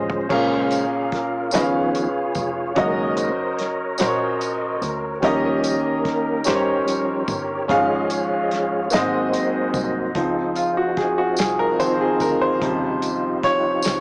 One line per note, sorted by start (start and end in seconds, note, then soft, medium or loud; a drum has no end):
0.00 0.27 A1 medium
0.00 0.28 F3 medium
0.00 0.27 G#3 soft
0.00 0.16 C#4 medium
0.00 0.28 C#4 medium
0.00 0.17 G#4 medium
0.00 0.27 G#4 medium
0.00 0.17 C5 medium
0.00 0.32 C5 medium
0.00 0.18 D#5 medium
0.10 floor tom medium
0.29 1.49 A#1 medium
0.29 1.50 A#2 medium
0.29 0.86 C#3 soft
0.29 0.86 G#3 soft
0.29 1.39 C#4 medium
0.29 1.51 C#4 medium
0.29 1.51 F4 medium
0.29 1.40 G#4 medium
0.29 1.16 G#4 medium
0.29 1.40 A#4 medium
0.29 0.86 C5 medium
0.29 1.41 F5 medium
0.29 kick loud
0.29 crash medium
0.71 closed hi-hat medium
0.71 tambourine medium
1.12 1.55 A#4 medium
1.12 kick medium
1.12 snare soft
1.12 closed hi-hat soft
1.51 2.32 C#2 medium
1.51 2.73 C#3 medium
1.51 2.08 D#3 soft
1.51 2.09 F3 soft
1.51 2.09 B3 medium
1.51 2.62 C#4 medium
1.51 2.73 F4 medium
1.51 2.63 G#4 medium
1.51 2.73 G#4 medium
1.51 2.63 B4 medium
1.51 2.34 C#5 medium
1.51 1.61 D#5 medium
1.51 snare loud
1.51 closed hi-hat medium
1.51 tambourine medium
1.62 2.67 F5 medium
1.95 closed hi-hat soft
1.95 tambourine soft
2.35 2.73 F1 medium
2.35 2.78 C#5 medium
2.35 kick medium
2.35 closed hi-hat soft
2.35 tambourine soft
2.76 3.99 F#1 loud
2.76 3.31 D#3 soft
2.76 3.32 G#3 soft
2.76 3.32 A#3 medium
2.76 3.86 C#4 medium
2.76 3.86 F#4 medium
2.76 3.86 A#4 medium
2.76 3.97 A#4 medium
2.76 3.19 D#5 medium
2.76 3.87 D#5 medium
2.76 kick loud
2.76 closed hi-hat medium
3.16 3.59 C5 medium
3.16 closed hi-hat medium
3.16 tambourine medium
3.57 4.00 C#5 medium
3.57 snare soft
3.57 closed hi-hat soft
3.98 4.78 A#1 medium
3.98 5.09 C#4 medium
3.98 5.09 F#4 medium
3.98 5.09 A#4 medium
3.98 4.77 A#4 medium
3.98 4.07 C5 medium
3.98 4.83 D#5 medium
3.98 snare loud
3.98 closed hi-hat medium
3.98 tambourine medium
4.07 5.13 C#5 medium
4.41 closed hi-hat soft
4.41 tambourine soft
4.79 5.20 D2 loud
4.79 5.18 A#4 medium
4.79 tambourine soft
4.83 closed hi-hat soft
5.20 6.42 D#2 medium
5.20 6.42 D#3 medium
5.20 5.77 F3 medium
5.20 5.77 G3 soft
5.20 6.42 A#3 medium
5.20 6.32 C#4 medium
5.20 6.42 C#4 medium
5.20 6.06 G4 medium
5.20 6.32 G4 medium
5.20 6.33 A#4 medium
5.20 kick loud
5.20 closed hi-hat medium
5.25 6.33 D#5 medium
5.64 closed hi-hat medium
5.64 tambourine medium
6.03 6.45 A#4 medium
6.03 kick medium
6.03 closed hi-hat soft
6.07 snare soft
6.44 7.24 G2 medium
6.44 7.55 C#4 medium
6.44 7.55 G4 medium
6.44 7.65 G4 medium
6.44 7.65 A#4 medium
6.44 7.56 A#4 medium
6.44 6.53 C5 medium
6.44 7.23 C#5 medium
6.44 closed hi-hat medium
6.44 tambourine medium
6.48 snare loud
6.54 7.60 C#5 medium
6.86 7.23 F3 soft
6.86 7.23 G3 soft
6.86 7.24 C#4 medium
6.86 closed hi-hat medium
6.86 tambourine soft
7.26 7.66 G1 medium
7.26 7.65 C#5 medium
7.26 kick medium
7.26 closed hi-hat soft
7.26 tambourine medium
7.68 8.88 G#1 loud
7.68 8.88 G#2 medium
7.68 8.88 F3 medium
7.68 8.88 G#3 soft
7.68 8.78 C#4 medium
7.68 8.89 C#4 medium
7.68 8.79 F4 medium
7.68 8.79 G#4 medium
7.68 8.89 G#4 medium
7.68 8.11 D#5 medium
7.68 8.79 F5 medium
7.68 kick loud
7.68 closed hi-hat medium
8.08 8.44 C#5 medium
8.08 closed hi-hat medium
8.08 tambourine medium
8.43 8.51 D#5 medium
8.49 8.83 C#5 medium
8.49 closed hi-hat soft
8.53 snare soft
8.84 8.92 C#5 medium
8.90 9.71 G#1 medium
8.90 10.11 G#2 medium
8.90 10.11 F#3 medium
8.90 10.11 A#3 soft
8.90 8.98 B3 medium
8.90 10.12 C4 medium
8.90 10.12 D#4 medium
8.90 10.02 F#4 medium
8.90 10.12 F#4 medium
8.90 10.02 G#4 medium
8.90 9.81 C5 medium
8.90 10.03 D#5 medium
8.90 snare loud
8.90 closed hi-hat medium
8.90 tambourine medium
8.98 10.05 C4 medium
9.33 closed hi-hat soft
9.33 tambourine soft
9.74 10.12 C2 medium
9.74 kick medium
9.74 closed hi-hat soft
9.74 tambourine medium
10.15 11.34 C#2 medium
10.15 11.78 F3 soft
10.15 14.00 F3 medium
10.15 12.59 C4 soft
10.15 11.79 C4 medium
10.15 12.57 D#4 soft
10.15 12.60 D#4 soft
10.15 14.00 F4 soft
10.15 12.59 G#4 medium
10.15 kick medium
10.15 closed hi-hat medium
10.56 10.76 F4 medium
10.56 closed hi-hat soft
10.56 tambourine medium
10.77 10.96 F#4 medium
10.97 11.17 G#4 medium
10.97 kick medium
10.97 snare soft
10.97 closed hi-hat soft
11.18 11.37 F#4 medium
11.37 12.17 C2 medium
11.37 11.60 G#4 medium
11.37 snare loud
11.37 closed hi-hat medium
11.37 tambourine medium
11.59 11.80 A#4 medium
11.79 12.17 D#3 soft
11.79 12.17 F3 soft
11.79 12.17 C4 soft
11.79 12.01 C5 medium
11.79 closed hi-hat soft
11.79 tambourine soft
12.01 12.21 G#4 medium
12.20 12.58 D2 medium
12.20 12.42 A#4 medium
12.20 kick medium
12.20 closed hi-hat soft
12.20 tambourine soft
12.41 13.40 C5 medium
12.61 13.81 D#2 medium
12.61 14.00 C3 medium
12.61 14.00 C#3 soft
12.61 14.00 F3 soft
12.61 14.00 G3 soft
12.61 14.00 D#4 medium
12.61 14.00 G4 medium
12.61 kick medium
12.61 closed hi-hat medium
13.02 closed hi-hat soft
13.02 tambourine medium
13.43 14.00 C#5 loud
13.43 kick medium
13.43 snare soft
13.43 closed hi-hat soft
13.82 14.00 C#2 medium
13.82 snare loud
13.82 closed hi-hat medium
13.82 tambourine medium